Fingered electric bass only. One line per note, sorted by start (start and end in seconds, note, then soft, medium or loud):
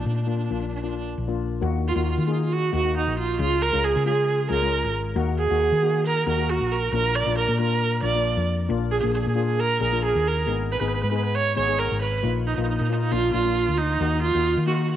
0.06 0.48 A#2 medium
0.51 1.14 A#1 medium
1.18 1.60 A#1 medium
1.62 1.94 D#2 loud
1.95 2.17 D#2 medium
2.18 2.70 D#3 medium
2.73 3.05 D#2 medium
3.07 3.38 A#1 medium
3.39 3.71 C#2 loud
3.74 3.94 C#2 medium
3.96 4.47 C#3 medium
4.50 4.82 C#2 medium
4.84 5.15 G#1 medium
5.16 5.48 D#2 loud
5.50 5.71 D#2 medium
5.72 6.24 D#3 medium
6.26 6.59 D#2 loud
6.61 6.91 A#1 medium
6.93 7.25 A#1 loud
7.26 7.47 A#1 medium
7.48 8.00 A#2 medium
8.03 8.35 A#1 medium
8.37 8.68 F2 medium
8.70 9.02 A#1 loud
9.04 9.25 A#1 medium
9.26 9.78 A#2 medium
9.81 10.13 A#1 medium
10.15 10.45 D#2 medium
10.47 10.79 G#1 loud
10.80 11.01 G#1 medium
11.03 11.55 G#2 medium
11.57 11.89 G#1 medium
11.91 12.22 G#1 medium
12.23 12.56 A#1 loud
12.57 12.78 A#1 medium
12.80 13.11 A#2 medium
13.12 13.33 A#1 loud
13.34 13.66 A#1 loud
13.68 13.99 D2 medium
14.00 14.33 D#2 loud
14.35 14.55 D#2 medium
14.57 14.96 D#3 medium